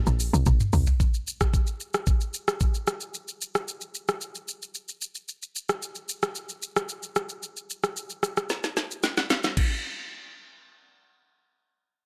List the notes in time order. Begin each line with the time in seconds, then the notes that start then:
0.07 A#1, shaker
0.20 open hi-hat, shaker
0.33 C2, shaker
0.46 A#1, kick, high tom, shaker
0.60 mid tom, shaker
0.73 C2, mid tom, open hi-hat, shaker
0.86 floor tom, shaker
1.00 kick, shaker
1.14 shaker
1.27 shaker
1.41 kick, cross-stick, shaker
1.54 kick, shaker
1.67 shaker
1.80 shaker
1.94 cross-stick, shaker
2.07 kick, shaker
2.21 shaker
2.34 shaker
2.48 cross-stick, shaker
2.60 kick, shaker
2.74 shaker
2.87 cross-stick, shaker
3.01 shaker
3.14 shaker
3.28 shaker
3.42 shaker
3.55 cross-stick, shaker
3.68 shaker
3.81 shaker
3.95 shaker
4.08 cross-stick, shaker
4.21 shaker
4.35 shaker
4.48 shaker
4.62 shaker
4.75 shaker
4.89 shaker
5.02 shaker
5.15 shaker
5.29 shaker
5.42 shaker
5.56 shaker
5.69 cross-stick, shaker
5.83 shaker
5.95 shaker
6.09 shaker
6.22 cross-stick, shaker
6.35 shaker
6.49 shaker
6.62 shaker
6.76 cross-stick, shaker
6.89 shaker
7.03 shaker
7.16 cross-stick, shaker
7.29 shaker
7.43 shaker
7.57 shaker
7.70 shaker
7.83 cross-stick, shaker
7.97 shaker
8.10 shaker
8.23 cross-stick, shaker
8.37 cross-stick, shaker
8.50 snare, shaker
8.64 snare, shaker
8.77 snare, shaker
8.91 shaker
9.03 snare, shaker
9.17 snare, shaker
9.30 snare, shaker
9.43 snare, shaker
9.57 kick, crash